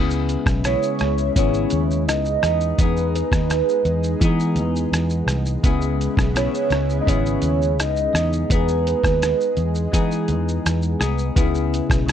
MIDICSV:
0, 0, Header, 1, 6, 480
1, 0, Start_track
1, 0, Key_signature, 4, "minor"
1, 0, Tempo, 715137
1, 1865, Time_signature, 4, 2, 24, 8
1, 8136, End_track
2, 0, Start_track
2, 0, Title_t, "Soft synth lead"
2, 0, Program_c, 0, 80
2, 436, Note_on_c, 0, 73, 104
2, 884, Note_off_c, 0, 73, 0
2, 916, Note_on_c, 0, 73, 109
2, 1364, Note_off_c, 0, 73, 0
2, 1396, Note_on_c, 0, 75, 100
2, 1883, Note_on_c, 0, 71, 98
2, 1893, Note_off_c, 0, 75, 0
2, 2112, Note_off_c, 0, 71, 0
2, 2116, Note_on_c, 0, 71, 95
2, 3044, Note_off_c, 0, 71, 0
2, 4272, Note_on_c, 0, 73, 105
2, 4675, Note_off_c, 0, 73, 0
2, 4705, Note_on_c, 0, 75, 79
2, 4757, Note_on_c, 0, 73, 108
2, 4767, Note_off_c, 0, 75, 0
2, 5232, Note_off_c, 0, 73, 0
2, 5237, Note_on_c, 0, 75, 108
2, 5716, Note_on_c, 0, 71, 98
2, 5727, Note_off_c, 0, 75, 0
2, 5952, Note_off_c, 0, 71, 0
2, 5960, Note_on_c, 0, 71, 89
2, 6887, Note_off_c, 0, 71, 0
2, 8136, End_track
3, 0, Start_track
3, 0, Title_t, "Clean electric guitar"
3, 0, Program_c, 1, 27
3, 0, Note_on_c, 1, 49, 84
3, 0, Note_on_c, 1, 59, 90
3, 0, Note_on_c, 1, 64, 88
3, 0, Note_on_c, 1, 68, 90
3, 421, Note_off_c, 1, 49, 0
3, 429, Note_on_c, 1, 49, 54
3, 434, Note_off_c, 1, 59, 0
3, 437, Note_on_c, 1, 59, 55
3, 442, Note_off_c, 1, 64, 0
3, 445, Note_on_c, 1, 64, 57
3, 450, Note_off_c, 1, 68, 0
3, 453, Note_on_c, 1, 68, 64
3, 907, Note_off_c, 1, 49, 0
3, 916, Note_on_c, 1, 49, 74
3, 920, Note_off_c, 1, 59, 0
3, 923, Note_on_c, 1, 59, 78
3, 925, Note_off_c, 1, 64, 0
3, 927, Note_on_c, 1, 64, 82
3, 932, Note_off_c, 1, 68, 0
3, 935, Note_on_c, 1, 68, 85
3, 1625, Note_off_c, 1, 68, 0
3, 1628, Note_on_c, 1, 68, 50
3, 1631, Note_off_c, 1, 49, 0
3, 1637, Note_off_c, 1, 64, 0
3, 1640, Note_on_c, 1, 63, 43
3, 1650, Note_off_c, 1, 59, 0
3, 1652, Note_on_c, 1, 59, 41
3, 1865, Note_off_c, 1, 59, 0
3, 1866, Note_off_c, 1, 68, 0
3, 1873, Note_off_c, 1, 63, 0
3, 1873, Note_on_c, 1, 59, 77
3, 1883, Note_on_c, 1, 63, 79
3, 1895, Note_on_c, 1, 68, 83
3, 2817, Note_on_c, 1, 52, 87
3, 2830, Note_off_c, 1, 59, 0
3, 2833, Note_on_c, 1, 59, 96
3, 2834, Note_off_c, 1, 63, 0
3, 2843, Note_on_c, 1, 63, 92
3, 2851, Note_off_c, 1, 68, 0
3, 2853, Note_on_c, 1, 68, 94
3, 3779, Note_off_c, 1, 52, 0
3, 3782, Note_on_c, 1, 49, 84
3, 3786, Note_off_c, 1, 59, 0
3, 3789, Note_on_c, 1, 59, 95
3, 3793, Note_off_c, 1, 63, 0
3, 3796, Note_on_c, 1, 64, 92
3, 3799, Note_off_c, 1, 68, 0
3, 3802, Note_on_c, 1, 68, 100
3, 4250, Note_off_c, 1, 49, 0
3, 4258, Note_on_c, 1, 49, 61
3, 4262, Note_off_c, 1, 59, 0
3, 4265, Note_on_c, 1, 59, 64
3, 4271, Note_off_c, 1, 64, 0
3, 4274, Note_on_c, 1, 64, 63
3, 4279, Note_off_c, 1, 68, 0
3, 4282, Note_on_c, 1, 68, 60
3, 4732, Note_off_c, 1, 49, 0
3, 4740, Note_on_c, 1, 49, 74
3, 4743, Note_off_c, 1, 59, 0
3, 4745, Note_on_c, 1, 59, 75
3, 4749, Note_off_c, 1, 64, 0
3, 4752, Note_on_c, 1, 64, 73
3, 4754, Note_off_c, 1, 68, 0
3, 4756, Note_on_c, 1, 68, 89
3, 5454, Note_off_c, 1, 68, 0
3, 5456, Note_on_c, 1, 68, 49
3, 5463, Note_off_c, 1, 49, 0
3, 5466, Note_off_c, 1, 64, 0
3, 5468, Note_on_c, 1, 63, 40
3, 5476, Note_off_c, 1, 59, 0
3, 5478, Note_on_c, 1, 59, 40
3, 5702, Note_off_c, 1, 68, 0
3, 5706, Note_off_c, 1, 59, 0
3, 5708, Note_off_c, 1, 63, 0
3, 5714, Note_on_c, 1, 59, 80
3, 5723, Note_on_c, 1, 63, 74
3, 5735, Note_on_c, 1, 68, 87
3, 6657, Note_on_c, 1, 52, 80
3, 6660, Note_off_c, 1, 63, 0
3, 6663, Note_off_c, 1, 59, 0
3, 6665, Note_on_c, 1, 59, 84
3, 6668, Note_on_c, 1, 63, 93
3, 6671, Note_off_c, 1, 68, 0
3, 6673, Note_on_c, 1, 68, 97
3, 7379, Note_off_c, 1, 68, 0
3, 7382, Note_on_c, 1, 68, 58
3, 7385, Note_off_c, 1, 63, 0
3, 7393, Note_on_c, 1, 63, 50
3, 7400, Note_off_c, 1, 59, 0
3, 7402, Note_on_c, 1, 59, 48
3, 7413, Note_off_c, 1, 52, 0
3, 7620, Note_off_c, 1, 59, 0
3, 7623, Note_on_c, 1, 49, 77
3, 7625, Note_off_c, 1, 68, 0
3, 7628, Note_on_c, 1, 59, 86
3, 7631, Note_off_c, 1, 63, 0
3, 7636, Note_on_c, 1, 64, 94
3, 7639, Note_on_c, 1, 68, 89
3, 8089, Note_off_c, 1, 49, 0
3, 8097, Note_on_c, 1, 49, 60
3, 8104, Note_off_c, 1, 59, 0
3, 8107, Note_on_c, 1, 59, 54
3, 8111, Note_off_c, 1, 64, 0
3, 8114, Note_on_c, 1, 64, 62
3, 8120, Note_off_c, 1, 68, 0
3, 8136, Note_off_c, 1, 49, 0
3, 8136, Note_off_c, 1, 59, 0
3, 8136, Note_off_c, 1, 64, 0
3, 8136, End_track
4, 0, Start_track
4, 0, Title_t, "Analog synth pad"
4, 0, Program_c, 2, 89
4, 0, Note_on_c, 2, 49, 85
4, 0, Note_on_c, 2, 56, 78
4, 0, Note_on_c, 2, 59, 73
4, 0, Note_on_c, 2, 64, 87
4, 1609, Note_off_c, 2, 49, 0
4, 1610, Note_off_c, 2, 64, 0
4, 1612, Note_off_c, 2, 56, 0
4, 1629, Note_on_c, 2, 63, 82
4, 1630, Note_on_c, 2, 56, 90
4, 1633, Note_on_c, 2, 68, 97
4, 3759, Note_off_c, 2, 59, 0
4, 3766, Note_off_c, 2, 63, 0
4, 3767, Note_off_c, 2, 56, 0
4, 3768, Note_off_c, 2, 68, 0
4, 3781, Note_on_c, 2, 64, 91
4, 3782, Note_on_c, 2, 49, 76
4, 3784, Note_on_c, 2, 59, 75
4, 3785, Note_on_c, 2, 56, 80
4, 5447, Note_off_c, 2, 64, 0
4, 5448, Note_off_c, 2, 49, 0
4, 5449, Note_off_c, 2, 56, 0
4, 5449, Note_off_c, 2, 59, 0
4, 5460, Note_on_c, 2, 63, 78
4, 5464, Note_on_c, 2, 59, 78
4, 5465, Note_on_c, 2, 56, 90
4, 5468, Note_on_c, 2, 68, 97
4, 7603, Note_off_c, 2, 63, 0
4, 7606, Note_off_c, 2, 56, 0
4, 7607, Note_off_c, 2, 68, 0
4, 7619, Note_on_c, 2, 49, 84
4, 7623, Note_on_c, 2, 64, 88
4, 7624, Note_on_c, 2, 56, 78
4, 8136, Note_off_c, 2, 49, 0
4, 8136, Note_off_c, 2, 56, 0
4, 8136, Note_off_c, 2, 59, 0
4, 8136, Note_off_c, 2, 64, 0
4, 8136, End_track
5, 0, Start_track
5, 0, Title_t, "Fingered electric bass"
5, 0, Program_c, 3, 33
5, 0, Note_on_c, 3, 37, 107
5, 236, Note_off_c, 3, 37, 0
5, 311, Note_on_c, 3, 35, 88
5, 500, Note_off_c, 3, 35, 0
5, 677, Note_on_c, 3, 37, 102
5, 864, Note_off_c, 3, 37, 0
5, 912, Note_on_c, 3, 32, 87
5, 1101, Note_off_c, 3, 32, 0
5, 1159, Note_on_c, 3, 39, 89
5, 1396, Note_off_c, 3, 39, 0
5, 1396, Note_on_c, 3, 37, 87
5, 1584, Note_off_c, 3, 37, 0
5, 1633, Note_on_c, 3, 40, 99
5, 1822, Note_off_c, 3, 40, 0
5, 1871, Note_on_c, 3, 40, 109
5, 2157, Note_off_c, 3, 40, 0
5, 2228, Note_on_c, 3, 39, 88
5, 2419, Note_off_c, 3, 39, 0
5, 2584, Note_on_c, 3, 40, 105
5, 2777, Note_off_c, 3, 40, 0
5, 2830, Note_on_c, 3, 52, 104
5, 3057, Note_on_c, 3, 40, 91
5, 3067, Note_off_c, 3, 52, 0
5, 3252, Note_off_c, 3, 40, 0
5, 3301, Note_on_c, 3, 40, 91
5, 3495, Note_off_c, 3, 40, 0
5, 3534, Note_on_c, 3, 36, 97
5, 3731, Note_off_c, 3, 36, 0
5, 3784, Note_on_c, 3, 37, 108
5, 4073, Note_off_c, 3, 37, 0
5, 4144, Note_on_c, 3, 35, 94
5, 4337, Note_off_c, 3, 35, 0
5, 4499, Note_on_c, 3, 37, 94
5, 4694, Note_off_c, 3, 37, 0
5, 4749, Note_on_c, 3, 32, 92
5, 4940, Note_off_c, 3, 32, 0
5, 4982, Note_on_c, 3, 39, 89
5, 5221, Note_off_c, 3, 39, 0
5, 5221, Note_on_c, 3, 37, 90
5, 5415, Note_off_c, 3, 37, 0
5, 5463, Note_on_c, 3, 40, 104
5, 5657, Note_off_c, 3, 40, 0
5, 5704, Note_on_c, 3, 40, 107
5, 5993, Note_off_c, 3, 40, 0
5, 6062, Note_on_c, 3, 39, 83
5, 6256, Note_off_c, 3, 39, 0
5, 6424, Note_on_c, 3, 40, 102
5, 6617, Note_off_c, 3, 40, 0
5, 6667, Note_on_c, 3, 52, 108
5, 6903, Note_on_c, 3, 40, 91
5, 6913, Note_off_c, 3, 52, 0
5, 7097, Note_off_c, 3, 40, 0
5, 7153, Note_on_c, 3, 40, 81
5, 7343, Note_off_c, 3, 40, 0
5, 7386, Note_on_c, 3, 36, 87
5, 7579, Note_off_c, 3, 36, 0
5, 7627, Note_on_c, 3, 37, 99
5, 7916, Note_off_c, 3, 37, 0
5, 7986, Note_on_c, 3, 35, 91
5, 8136, Note_off_c, 3, 35, 0
5, 8136, End_track
6, 0, Start_track
6, 0, Title_t, "Drums"
6, 71, Note_on_c, 9, 82, 57
6, 138, Note_off_c, 9, 82, 0
6, 195, Note_on_c, 9, 42, 51
6, 195, Note_on_c, 9, 82, 55
6, 262, Note_off_c, 9, 42, 0
6, 262, Note_off_c, 9, 82, 0
6, 309, Note_on_c, 9, 36, 94
6, 313, Note_on_c, 9, 37, 90
6, 315, Note_on_c, 9, 82, 55
6, 376, Note_off_c, 9, 36, 0
6, 380, Note_off_c, 9, 37, 0
6, 382, Note_off_c, 9, 82, 0
6, 431, Note_on_c, 9, 42, 76
6, 431, Note_on_c, 9, 82, 68
6, 436, Note_on_c, 9, 37, 94
6, 498, Note_off_c, 9, 42, 0
6, 498, Note_off_c, 9, 82, 0
6, 503, Note_off_c, 9, 37, 0
6, 555, Note_on_c, 9, 82, 61
6, 622, Note_off_c, 9, 82, 0
6, 664, Note_on_c, 9, 42, 41
6, 664, Note_on_c, 9, 82, 39
6, 678, Note_on_c, 9, 37, 79
6, 731, Note_off_c, 9, 42, 0
6, 731, Note_off_c, 9, 82, 0
6, 745, Note_off_c, 9, 37, 0
6, 792, Note_on_c, 9, 82, 47
6, 859, Note_off_c, 9, 82, 0
6, 913, Note_on_c, 9, 36, 102
6, 915, Note_on_c, 9, 42, 78
6, 915, Note_on_c, 9, 82, 74
6, 980, Note_off_c, 9, 36, 0
6, 982, Note_off_c, 9, 42, 0
6, 982, Note_off_c, 9, 82, 0
6, 1034, Note_on_c, 9, 82, 50
6, 1101, Note_off_c, 9, 82, 0
6, 1143, Note_on_c, 9, 42, 55
6, 1143, Note_on_c, 9, 82, 60
6, 1210, Note_off_c, 9, 42, 0
6, 1210, Note_off_c, 9, 82, 0
6, 1280, Note_on_c, 9, 82, 61
6, 1347, Note_off_c, 9, 82, 0
6, 1400, Note_on_c, 9, 42, 73
6, 1400, Note_on_c, 9, 82, 74
6, 1403, Note_on_c, 9, 37, 84
6, 1468, Note_off_c, 9, 42, 0
6, 1468, Note_off_c, 9, 82, 0
6, 1470, Note_off_c, 9, 37, 0
6, 1511, Note_on_c, 9, 82, 52
6, 1578, Note_off_c, 9, 82, 0
6, 1630, Note_on_c, 9, 37, 96
6, 1636, Note_on_c, 9, 42, 65
6, 1636, Note_on_c, 9, 82, 69
6, 1697, Note_off_c, 9, 37, 0
6, 1703, Note_off_c, 9, 42, 0
6, 1703, Note_off_c, 9, 82, 0
6, 1749, Note_on_c, 9, 82, 48
6, 1817, Note_off_c, 9, 82, 0
6, 1869, Note_on_c, 9, 36, 115
6, 1870, Note_on_c, 9, 42, 73
6, 1870, Note_on_c, 9, 82, 72
6, 1937, Note_off_c, 9, 36, 0
6, 1937, Note_off_c, 9, 42, 0
6, 1937, Note_off_c, 9, 82, 0
6, 1991, Note_on_c, 9, 82, 53
6, 2058, Note_off_c, 9, 82, 0
6, 2118, Note_on_c, 9, 42, 55
6, 2118, Note_on_c, 9, 82, 54
6, 2185, Note_off_c, 9, 42, 0
6, 2185, Note_off_c, 9, 82, 0
6, 2226, Note_on_c, 9, 36, 92
6, 2233, Note_on_c, 9, 37, 95
6, 2234, Note_on_c, 9, 82, 55
6, 2293, Note_off_c, 9, 36, 0
6, 2300, Note_off_c, 9, 37, 0
6, 2302, Note_off_c, 9, 82, 0
6, 2350, Note_on_c, 9, 42, 71
6, 2350, Note_on_c, 9, 82, 73
6, 2356, Note_on_c, 9, 37, 91
6, 2417, Note_off_c, 9, 42, 0
6, 2417, Note_off_c, 9, 82, 0
6, 2423, Note_off_c, 9, 37, 0
6, 2476, Note_on_c, 9, 82, 60
6, 2543, Note_off_c, 9, 82, 0
6, 2585, Note_on_c, 9, 42, 41
6, 2585, Note_on_c, 9, 82, 39
6, 2652, Note_off_c, 9, 42, 0
6, 2652, Note_off_c, 9, 82, 0
6, 2708, Note_on_c, 9, 82, 50
6, 2775, Note_off_c, 9, 82, 0
6, 2827, Note_on_c, 9, 36, 105
6, 2829, Note_on_c, 9, 42, 78
6, 2829, Note_on_c, 9, 82, 73
6, 2894, Note_off_c, 9, 36, 0
6, 2896, Note_off_c, 9, 42, 0
6, 2896, Note_off_c, 9, 82, 0
6, 2951, Note_on_c, 9, 82, 50
6, 3018, Note_off_c, 9, 82, 0
6, 3060, Note_on_c, 9, 42, 58
6, 3060, Note_on_c, 9, 82, 58
6, 3127, Note_off_c, 9, 42, 0
6, 3127, Note_off_c, 9, 82, 0
6, 3194, Note_on_c, 9, 82, 55
6, 3261, Note_off_c, 9, 82, 0
6, 3311, Note_on_c, 9, 42, 74
6, 3311, Note_on_c, 9, 82, 79
6, 3314, Note_on_c, 9, 37, 89
6, 3379, Note_off_c, 9, 42, 0
6, 3379, Note_off_c, 9, 82, 0
6, 3381, Note_off_c, 9, 37, 0
6, 3422, Note_on_c, 9, 82, 52
6, 3489, Note_off_c, 9, 82, 0
6, 3542, Note_on_c, 9, 37, 89
6, 3548, Note_on_c, 9, 42, 71
6, 3548, Note_on_c, 9, 82, 62
6, 3609, Note_off_c, 9, 37, 0
6, 3615, Note_off_c, 9, 42, 0
6, 3615, Note_off_c, 9, 82, 0
6, 3662, Note_on_c, 9, 82, 53
6, 3729, Note_off_c, 9, 82, 0
6, 3783, Note_on_c, 9, 36, 115
6, 3785, Note_on_c, 9, 42, 73
6, 3785, Note_on_c, 9, 82, 76
6, 3851, Note_off_c, 9, 36, 0
6, 3852, Note_off_c, 9, 42, 0
6, 3852, Note_off_c, 9, 82, 0
6, 3903, Note_on_c, 9, 82, 52
6, 3970, Note_off_c, 9, 82, 0
6, 4034, Note_on_c, 9, 42, 54
6, 4034, Note_on_c, 9, 82, 55
6, 4102, Note_off_c, 9, 42, 0
6, 4102, Note_off_c, 9, 82, 0
6, 4143, Note_on_c, 9, 36, 103
6, 4153, Note_on_c, 9, 37, 95
6, 4154, Note_on_c, 9, 82, 58
6, 4210, Note_off_c, 9, 36, 0
6, 4220, Note_off_c, 9, 37, 0
6, 4221, Note_off_c, 9, 82, 0
6, 4269, Note_on_c, 9, 42, 81
6, 4269, Note_on_c, 9, 82, 75
6, 4274, Note_on_c, 9, 37, 96
6, 4336, Note_off_c, 9, 42, 0
6, 4336, Note_off_c, 9, 82, 0
6, 4341, Note_off_c, 9, 37, 0
6, 4393, Note_on_c, 9, 82, 62
6, 4460, Note_off_c, 9, 82, 0
6, 4500, Note_on_c, 9, 42, 39
6, 4500, Note_on_c, 9, 82, 41
6, 4513, Note_on_c, 9, 37, 80
6, 4567, Note_off_c, 9, 42, 0
6, 4567, Note_off_c, 9, 82, 0
6, 4580, Note_off_c, 9, 37, 0
6, 4629, Note_on_c, 9, 82, 47
6, 4696, Note_off_c, 9, 82, 0
6, 4747, Note_on_c, 9, 36, 94
6, 4754, Note_on_c, 9, 42, 76
6, 4754, Note_on_c, 9, 82, 79
6, 4814, Note_off_c, 9, 36, 0
6, 4821, Note_off_c, 9, 42, 0
6, 4821, Note_off_c, 9, 82, 0
6, 4874, Note_on_c, 9, 82, 52
6, 4941, Note_off_c, 9, 82, 0
6, 4979, Note_on_c, 9, 42, 60
6, 4979, Note_on_c, 9, 82, 59
6, 5046, Note_off_c, 9, 42, 0
6, 5046, Note_off_c, 9, 82, 0
6, 5114, Note_on_c, 9, 82, 57
6, 5181, Note_off_c, 9, 82, 0
6, 5233, Note_on_c, 9, 42, 70
6, 5233, Note_on_c, 9, 82, 77
6, 5235, Note_on_c, 9, 37, 88
6, 5300, Note_off_c, 9, 42, 0
6, 5300, Note_off_c, 9, 82, 0
6, 5303, Note_off_c, 9, 37, 0
6, 5345, Note_on_c, 9, 82, 47
6, 5412, Note_off_c, 9, 82, 0
6, 5469, Note_on_c, 9, 37, 94
6, 5475, Note_on_c, 9, 42, 69
6, 5475, Note_on_c, 9, 82, 70
6, 5536, Note_off_c, 9, 37, 0
6, 5542, Note_off_c, 9, 42, 0
6, 5542, Note_off_c, 9, 82, 0
6, 5591, Note_on_c, 9, 82, 52
6, 5658, Note_off_c, 9, 82, 0
6, 5706, Note_on_c, 9, 36, 114
6, 5710, Note_on_c, 9, 42, 71
6, 5710, Note_on_c, 9, 82, 76
6, 5773, Note_off_c, 9, 36, 0
6, 5777, Note_off_c, 9, 42, 0
6, 5777, Note_off_c, 9, 82, 0
6, 5828, Note_on_c, 9, 82, 56
6, 5895, Note_off_c, 9, 82, 0
6, 5953, Note_on_c, 9, 42, 59
6, 5953, Note_on_c, 9, 82, 55
6, 6020, Note_off_c, 9, 42, 0
6, 6020, Note_off_c, 9, 82, 0
6, 6064, Note_on_c, 9, 36, 99
6, 6071, Note_on_c, 9, 37, 93
6, 6072, Note_on_c, 9, 82, 58
6, 6132, Note_off_c, 9, 36, 0
6, 6138, Note_off_c, 9, 37, 0
6, 6140, Note_off_c, 9, 82, 0
6, 6191, Note_on_c, 9, 42, 76
6, 6191, Note_on_c, 9, 82, 80
6, 6196, Note_on_c, 9, 37, 90
6, 6258, Note_off_c, 9, 42, 0
6, 6258, Note_off_c, 9, 82, 0
6, 6263, Note_off_c, 9, 37, 0
6, 6314, Note_on_c, 9, 82, 60
6, 6381, Note_off_c, 9, 82, 0
6, 6421, Note_on_c, 9, 42, 37
6, 6421, Note_on_c, 9, 82, 38
6, 6488, Note_off_c, 9, 42, 0
6, 6488, Note_off_c, 9, 82, 0
6, 6544, Note_on_c, 9, 82, 49
6, 6611, Note_off_c, 9, 82, 0
6, 6668, Note_on_c, 9, 36, 91
6, 6670, Note_on_c, 9, 42, 74
6, 6670, Note_on_c, 9, 82, 75
6, 6735, Note_off_c, 9, 36, 0
6, 6737, Note_off_c, 9, 42, 0
6, 6737, Note_off_c, 9, 82, 0
6, 6788, Note_on_c, 9, 82, 50
6, 6855, Note_off_c, 9, 82, 0
6, 6901, Note_on_c, 9, 42, 59
6, 6901, Note_on_c, 9, 82, 56
6, 6968, Note_off_c, 9, 42, 0
6, 6968, Note_off_c, 9, 82, 0
6, 7038, Note_on_c, 9, 82, 57
6, 7105, Note_off_c, 9, 82, 0
6, 7156, Note_on_c, 9, 42, 74
6, 7156, Note_on_c, 9, 82, 78
6, 7158, Note_on_c, 9, 37, 86
6, 7223, Note_off_c, 9, 42, 0
6, 7223, Note_off_c, 9, 82, 0
6, 7225, Note_off_c, 9, 37, 0
6, 7265, Note_on_c, 9, 82, 52
6, 7332, Note_off_c, 9, 82, 0
6, 7388, Note_on_c, 9, 37, 89
6, 7393, Note_on_c, 9, 42, 68
6, 7393, Note_on_c, 9, 82, 66
6, 7455, Note_off_c, 9, 37, 0
6, 7460, Note_off_c, 9, 42, 0
6, 7460, Note_off_c, 9, 82, 0
6, 7506, Note_on_c, 9, 82, 52
6, 7573, Note_off_c, 9, 82, 0
6, 7627, Note_on_c, 9, 36, 113
6, 7629, Note_on_c, 9, 42, 70
6, 7629, Note_on_c, 9, 82, 73
6, 7694, Note_off_c, 9, 36, 0
6, 7697, Note_off_c, 9, 42, 0
6, 7697, Note_off_c, 9, 82, 0
6, 7750, Note_on_c, 9, 82, 57
6, 7817, Note_off_c, 9, 82, 0
6, 7879, Note_on_c, 9, 42, 56
6, 7879, Note_on_c, 9, 82, 52
6, 7946, Note_off_c, 9, 42, 0
6, 7946, Note_off_c, 9, 82, 0
6, 7986, Note_on_c, 9, 36, 96
6, 7993, Note_on_c, 9, 37, 96
6, 7995, Note_on_c, 9, 82, 61
6, 8053, Note_off_c, 9, 36, 0
6, 8061, Note_off_c, 9, 37, 0
6, 8062, Note_off_c, 9, 82, 0
6, 8112, Note_on_c, 9, 42, 74
6, 8112, Note_on_c, 9, 82, 74
6, 8136, Note_off_c, 9, 42, 0
6, 8136, Note_off_c, 9, 82, 0
6, 8136, End_track
0, 0, End_of_file